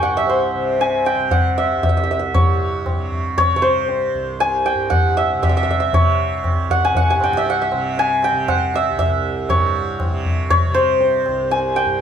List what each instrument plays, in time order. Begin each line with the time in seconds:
Already playing: tanpura C2 G2 C3, santur C#5 E5 C#6
0.02 santur F#5, tabla na
0.17 santur E5
0.27 santur C5, tabla tin
0.55 tanpura C3
0.79 santur G#5, tabla tin
1.05 santur G5, tabla na
1.15 tanpura C3
1.31 santur F#5, tabla tin, tabla ge
1.58 santur E5
1.76 tanpura C2
1.83 santur E5, tabla tin, tabla ge
1.89 santur E5
1.97 santur E5
2.04 santur E5
2.11 santur E5
2.19 santur E5
2.33 tanpura G2, santur C#5, tabla tin, tabla ge
2.86 tabla na, tabla ge
2.93 tanpura C3
3.12 tabla ge
3.38 santur C#5, tabla tin, tabla ge
3.54 tanpura C3, santur C#5
3.62 santur C5
3.89 tabla tin
4.14 tanpura C2
4.40 santur G#5, tabla tin
4.66 santur G5
4.75 tanpura G2
4.90 santur F#5, tabla tin, tabla ge
5.17 santur E5
5.34 tanpura C3
5.43 santur E5, tabla na, tabla ge
5.49 santur E5
5.57 santur E5
5.63 santur E5
5.68 santur E5, tabla ge
5.80 santur E5
5.93 tanpura C3, santur C#5, tabla tin, tabla ge
6.44 tabla na, tabla ge
6.54 tanpura C2
6.70 santur F#5, tabla ge
6.85 santur G#5
6.95 santur F#5, tabla tin, tabla ge
7.10 tanpura G2, santur G#5
7.20 santur G5, tabla na
7.33 santur E5, tabla ke
7.46 santur F#5, tabla tin
7.62 santur E5
7.72 tanpura C3, tabla na
7.97 santur G#5, tabla tin
8.23 santur G5, tabla na
8.32 tanpura C3
8.48 santur F#5, tabla na, tabla ge
8.74 santur E5, tabla te
8.91 tanpura C2
8.99 santur E5, tabla tin, tabla ge
9.49 tanpura G2, santur C#5, tabla tin, tabla ge
10.00 tabla na, tabla ge
10.08 tanpura C3
10.25 tabla ge
10.50 santur C#5, tabla tin, tabla ge
10.66 tanpura C3
10.74 santur C5
11.01 tabla tin
11.26 tanpura C2, tabla na
11.51 santur G#5, tabla tin
11.76 santur G5
11.86 tanpura G2